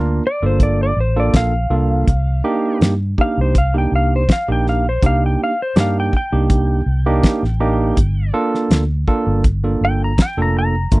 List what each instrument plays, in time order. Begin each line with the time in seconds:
Already playing: fingered electric bass D2, tine electric piano A#3 D4 F4 A#4
0.27 electric slide guitar D5
0.42 fingered electric bass G1, tine electric piano A#3 D4 F4 A4
0.46 electric slide guitar C5
0.60 electric slide guitar D5, kick, closed hi-hat
0.83 electric slide guitar D5
0.97 fingered electric bass A1, electric slide guitar C5
1.16 tine electric piano A#3 D4 F4 A4, electric slide guitar D5
1.34 fingered electric bass A#1, electric slide guitar F5, kick, snare, closed hi-hat
1.70 fingered electric bass C2, tine electric piano A#3 D4 F4 A4
2.07 fingered electric bass C2, kick, closed hi-hat
2.44 tine electric piano A#3 D4 D#4 G4
2.81 fingered electric bass G2, snare, closed hi-hat
3.18 tine electric piano A#3 D4 D#4 G4, electric slide guitar F5, kick
3.38 fingered electric bass C2, electric slide guitar C5
3.55 electric slide guitar F5, kick, closed hi-hat
3.74 tine electric piano A#3 D4 D#4 G4
3.78 electric slide guitar G5
3.92 fingered electric bass C2, electric slide guitar F5
4.16 electric slide guitar C5
4.29 electric slide guitar F5, kick, snare, closed hi-hat
4.48 fingered electric bass A#1, tine electric piano A#3 D4 D#4 G4, electric slide guitar G5
4.67 electric slide guitar F5, snare
4.89 electric slide guitar C5
5.02 fingered electric bass C2, tine electric piano A#3 D4 D#4 G4, electric slide guitar F5, kick, closed hi-hat
5.26 electric slide guitar G5
5.44 electric slide guitar F5
5.62 electric slide guitar C5
5.76 fingered electric bass G2, tine electric piano A#3 D4 D#4 G4, snare, closed hi-hat
5.80 electric slide guitar F5
6.00 electric slide guitar G5
6.13 electric slide guitar G5, kick
6.32 fingered electric bass C2, tine electric piano A#3 D4 D#4 G4
6.50 kick, closed hi-hat
6.86 fingered electric bass C2
7.06 tine electric piano A#3 D4 D#4 G4
7.23 kick, snare, closed hi-hat
7.43 fingered electric bass A1, snare
7.60 tine electric piano A#3 D4 D#4 G4
7.97 fingered electric bass G1, kick, closed hi-hat
8.33 tine electric piano A#3 D4 F4 A4
8.54 snare
8.70 fingered electric bass D2, snare, closed hi-hat
9.08 tine electric piano A#3 D4 F4 A4, kick
9.27 fingered electric bass G1
9.44 kick, closed hi-hat
9.64 tine electric piano A#3 D4 F4 A4
9.81 fingered electric bass G1, electric slide guitar G5
10.04 electric slide guitar A#5
10.18 kick, snare, closed hi-hat
10.22 electric slide guitar G5
10.37 fingered electric bass F1, tine electric piano A#3 D4 F4 A4
10.42 electric slide guitar A#5
10.59 electric slide guitar A#5
10.92 fingered electric bass G1, tine electric piano A3 A#3 D4 F4, kick, closed hi-hat